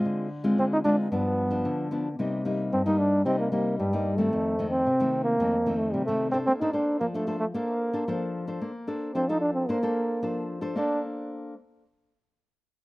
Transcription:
<<
  \new Staff \with { instrumentName = "Nylon-string guitar" } { \time 4/4 \key bes \major \tempo 4 = 112 << { d4 d4 g,4 d4 | c4 g,4 c4 g,4 | f,4 c4 f,4 c4 | bes4 f4 bes4 f4 |
bes4 f4 bes4 f4 | <bes d' a' c''>8 r2. r8 | } \\ { <aes c' f'>8 r16 <aes c' f'>8. <aes c' f'>8 <f b d'>8. <f b d'>8. <f b d'>16 r16 | <g bes ees'>8 <g bes ees'>8. <g bes ees'>8. <g bes ees'>8 <g bes ees'>8. <g bes ees'>8 <ees a c'>16~ | <ees a c'>8 <ees a c'>8 r16 <ees a c'>8. <ees a c'>16 r16 <ees a c'>8. <ees a c'>8 <d' a' c''>16~ | <d' a' c''>16 <d' a' c''>16 <d' a' c''>8 r16 <d' a' c''>16 <d' a' c''>16 r16 <d' a' c''>8. <d' a' c''>16 <d' a' c''>8. <d' a' c''>16~ |
<d' a' c''>16 r16 <d' a' c''>8 <d' a' c''>16 <d' a' c''>8. <d' a' c''>16 <d' a' c''>8. <d' a' c''>8. <d' a' c''>16~ | <d' a' c''>8 r2. r8 | } >> }
  \new Staff \with { instrumentName = "Trombone" } { \time 4/4 \key bes \major r4 c'16 ees'16 d'8 b4. r8 | r4 c'16 ees'16 d'8 c'16 bes16 bes8 g8. a16~ | a8. c'4 bes4 a16 g16 a8 c'16 | c'16 ees'16 d'8 bes16 a8 a16 bes4. r8 |
r4 c'16 ees'16 d'16 c'16 bes4. r8 | d'8 r2. r8 | }
>>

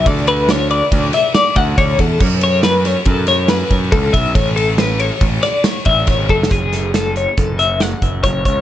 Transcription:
<<
  \new Staff \with { instrumentName = "Clean electric guitar" } { \time 5/4 \key fis \minor \tempo 4 = 139 d''8 b'8 cis''8 d''4 e''8 d''8 fis''8 cis''8 a'8 | r8 cis''8 b'8 cis''8 a'8 cis''8 b'4 a'8 e''8 | cis''8 a'8 b'8 cis''4 d''8 cis''8 e''8 cis''8 a'8 | gis'4 a'8 cis''8 a'8 e''8 fis''4 cis''8 cis''8 | }
  \new Staff \with { instrumentName = "Picked electric bass" } { \clef bass \time 5/4 \key fis \minor d,2 d,8 r4 d,8 d,8 e,8 | fis,2 fis,4. fis,8 cis,8 b,,8 | a,,2 a,,8 r4 a,,8 gis,,8 fis,,8 | fis,,2 fis,,4. fis,,8 fis,,8 cis,8 | }
  \new DrumStaff \with { instrumentName = "Drums" } \drummode { \time 5/4 <bd cymr>8 cymr8 <cymr sn>8 cymr8 <bd cymr>8 <cymr sn>8 <cymr sn>8 <bd cymr>8 <bd cymr>8 <bd cymr>8 | <cymc bd>8 cymr8 <cymr sn>8 <cymr sn>8 <bd cymr>8 <cymr sn>8 <cymr sn>8 <bd cymr>8 <bd cymr>8 <bd cymr>8 | <bd cymr>8 cymr8 <cymr sn>8 cymr8 <bd cymr>8 <cymr sn>8 <cymr sn>8 <bd cymr>8 \tuplet 3/2 { <bd cymr sn>16 r16 r16 bd16 r16 sn16 } | <hh bd>8 <hh sn>8 <hh sn>8 hh8 <hh bd>8 hh8 <hh sn>8 <hh bd>8 <hh bd>8 <hh bd>8 | }
>>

